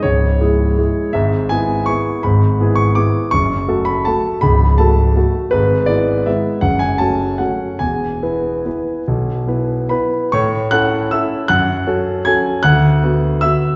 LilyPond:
\new Staff \with { instrumentName = "Grand piano" } { \time 3/4 \key cis \phrygian \tempo 4 = 160 << { cis''2. | \key e \mixolydian e''4 gis''4 cis'''4 | b''4. cis'''8 d'''4 | cis'''4. b''8 a''4 |
b''4 a''4. r8 | b'4 d''4 e''4 | fis''8 gis''8 a''4 fis''4 | gis''2.~ |
gis''2 <b' b''>4 | <cis'' cis'''>4 <fis'' fis'''>4 <e'' e'''>4 | <fis'' fis'''>2 <gis'' gis'''>4 | <fis'' fis'''>2 <e'' e'''>4 | } \\ { <cis,, cis,>4 <gis e' gis'>4 <gis e' gis'>4 | <gis,, gis,>4 <b e' gis'>4 <b e' gis'>4 | <gis,, gis,>4 <b e' gis'>4 <b e' gis'>4 | <fis,, fis,>4 <a fis' a'>4 <a fis' a'>4 |
<cis,, cis,>4 <a fis' a'>4 <a fis' a'>4 | <gis,, gis,>4 <gis b e'>4 <gis b e'>4 | <fis,, fis,>4 <a cis' fis'>4 <a cis' fis'>4 | <e,, e,>4 <b e' b'>4 <b e' b'>4 |
<b,, b,>4 <b e' b'>4 <b e'>4 | a,4 <cis' e' a'>4 <cis' e' a'>4 | fis,4 <cis' fis' a'>4 <cis' fis' a'>4 | d,4 <b fis'>4 <b fis'>4 | } >> }